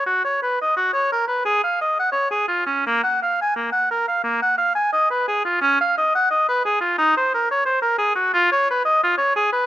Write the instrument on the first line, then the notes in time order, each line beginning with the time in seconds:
oboe
0.06 F#4
0.24 C#5
0.42 B4
0.61 D#5
0.77 F#4
0.93 C#5
1.12 A#4
1.28 B4
1.45 G#4
1.64 F5
1.81 D#5
1.99 F#5
2.12 C#5
2.31 G#4
2.48 F4
2.66 C#4
2.86 A#3
3.04 F#5
3.22 F5
3.41 G#5
3.56 A#3
3.72 F#5
3.91 A#4
4.08 F5
4.24 A#3
4.42 F#5
4.58 F5
4.75 G#5
4.93 D#5
5.10 B4
5.28 G#4
5.45 F4
5.61 C#4
5.81 F5
5.98 D#5
6.15 F#5
6.30 D#5
6.49 B4
6.65 G#4
6.81 F4
6.98 D#4
7.17 C5
7.34 A#4
7.51 C#5
7.65 C5
7.82 A#4
7.98 G#4
8.15 F#4
8.33 F4
8.52 C#5
8.70 B4
8.85 D#5
9.04 F4
9.18 C#5
9.36 G#4
9.53 B4